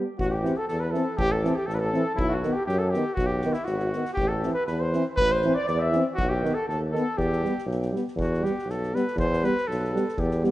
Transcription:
0.18 A1 F#4, kick
0.31 G4
0.35 G4
0.43 E3 C4, snare
0.57 A4
0.68 E2 A4, snare
0.80 B4
0.84 B4
0.91 E3 A4, snare
0.96 C4 A4
1.17 A1 G4, kick
1.23 G4
1.32 A4
1.43 E3 C4, snare
1.55 G4
1.66 A1 A4, snare
1.74 B4
1.79 A4 B4
1.86 A4
1.93 E3 C4, snare
2.15 B1 E4, kick
2.20 E4
2.29 F#4
2.35 F#4
2.43 D#3 B3, snare
2.53 G4
2.66 F#2 G4, snare
2.79 A4
2.90 G4, snare
2.94 D#3 B3
3.14 B1 F#4, kick
3.26 G4
3.41 D#3 B3, snare
3.53 E4, snare
3.64 G#1 F#4, snare
3.79 snare
3.93 D#3 B3, snare
4.05 snare
4.13 G4
4.17 A1 G4, kick
4.28 A4
4.43 E3 C4, snare
4.54 B4
4.66 E2 B4, snare
4.81 C5
4.93 E3 C4, snare
5.17 A1 B4, kick
5.30 C5
5.42 E3 C4, snare
5.54 D5
5.65 E2 D5, snare
5.79 E5
5.91 E3, snare
5.96 C4
6.14 B1 F#4
6.18 F#4, kick
6.29 G4
6.34 G4
6.43 D#3 B3, snare
6.54 A4
6.67 D#2 A4, snare
6.92 D#3 A4, snare
6.97 B3
7.17 E2 G4, kick
7.32 snare
7.43 G3 B3, snare
7.58 snare
7.66 B1
7.71 snare
7.82 snare
7.91 G3 B3
7.96 snare
8.08 snare
8.15 E2, kick
8.21 F#4
8.34 snare
8.41 G3 G4, snare
8.46 B3
8.58 snare
8.65 B1
8.69 A4, snare
8.83 snare
8.94 G3 B3 B4, snare
9.07 snare
9.16 E2 C5, kick
9.33 snare
9.43 G3 B3 B4, snare
9.57 snare
9.68 B1 A4, snare
9.84 snare
9.93 G3 B3, snare
10.08 snare
10.17 E2 G4, kick
10.31 snare
10.43 G3 B3, snare

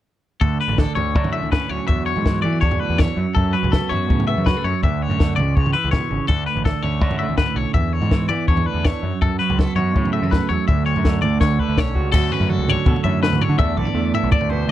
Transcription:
0.41 D2 A4, kick, floor tom
0.61 B4
0.68 A1, floor tom
0.78 D3 A4, kick, snare
0.95 D2 C#4 C#5, floor tom, mid tom
1.15 F#2 D4, kick
1.24 E4, floor tom, mid tom
1.33 A2 E5
1.42 D2, mid tom
1.52 C#4 B4, kick, snare, floor tom
1.69 D2 F#3 C#5
1.88 E2 E5, kick, floor tom
2.06 C#5
2.16 G#2, floor tom
2.25 E3, kick, snare
2.42 E3 A3 D5, floor tom, mid tom
2.53 B3
2.61 E2 D4 C#5, kick
2.71 floor tom, mid tom
2.80 D2 B4
2.90 E2
2.98 E2 C#5, kick, snare, floor tom
3.16 F#2
3.35 F#2 A4, kick, floor tom
3.53 F#3 B4
3.63 C#2, floor tom
3.72 B3 A4, kick, snare
3.89 F#2 F#4 C#5, floor tom, mid tom
4.10 A2 C#3, kick
4.20 floor tom, mid tom
4.27 B3 E5
4.37 F#2, mid tom
4.46 F#3 B4, kick, snare, floor tom
4.57 A3
4.64 F#2 C#5
4.83 D2 E5, kick, floor tom
5.02 C#5
5.09 F#2, floor tom
5.19 D3, kick, snare
5.36 C#2 C#3 D5, floor tom, mid tom
5.55 C#2 C#5, kick
5.66 floor tom, mid tom
5.73 E3 B4
5.84 C#2
5.91 B2 C#5, kick, snare, floor tom
6.11 G#1 C#3
6.28 D2 A4, kick, floor tom
6.46 B4
6.55 A1, floor tom
6.65 D3 A4, kick, snare
6.82 D2 C#4 C#5, floor tom, mid tom
7.01 F#2 D4, kick
7.11 E4, floor tom, mid tom
7.19 A2 E5
7.29 D2, mid tom
7.38 B4, kick, snare, floor tom
7.55 B1 D2 C#5
7.74 E2 E5, kick, floor tom
7.93 C#5
8.01 G#2, floor tom
8.11 E3, kick, snare
8.29 E3 B3 D5, floor tom, mid tom
8.48 E2 D4 C#5, kick
8.57 floor tom, mid tom
8.66 D2 B4
8.74 E2
8.85 E2 C#5, kick, snare, floor tom
9.03 F#2
9.22 F#2 A4, kick, floor tom
9.39 F#3 B4
9.50 C#2, floor tom
9.59 B3 A4, kick, snare
9.76 F#2 F#4 C#5, floor tom, mid tom
9.96 A2 C#3, kick
10.05 floor tom, mid tom
10.13 A3 E5
10.22 F#2 B3, mid tom
10.31 A3 B4, kick, snare, floor tom
10.49 E2 F#2 C#5
10.68 D2 E5, kick, floor tom
10.86 C#5
10.96 F#2, floor tom
11.05 D3, kick, snare
11.22 D2 D5, floor tom, mid tom
11.40 D2 C#5, kick, snare
11.59 D3 B4, kick
11.69 D2
11.78 B1 C#4 C#5, kick, snare
11.95 C#2 F#4, kick
12.12 D2 F#3 C#4 F#4 A4, kick, floor tom, crash
12.32 C#4 B4, floor tom, mid tom
12.40 F#2, floor tom
12.49 F#3 A4, mid tom
12.58 C#2
12.68 D3 C#5, floor tom
12.86 B2 A4, kick, floor tom
12.96 floor tom
13.04 F#2 A2 C#4 E5, floor tom, mid tom
13.23 B4, snare
13.31 D2, floor tom, mid tom
13.41 D2 C#5, floor tom
13.49 D3
13.57 E2 A3 B3 D4 E5, kick, floor tom
13.77 B1 A3 D5, floor tom, mid tom
13.85 B3, floor tom
13.95 E2 A3
14.14 E3 E5, floor tom
14.23 B1
14.32 D4 D5, kick, floor tom
14.41 D2, floor tom
14.50 B2 B3 C5, floor tom, mid tom
14.68 D2

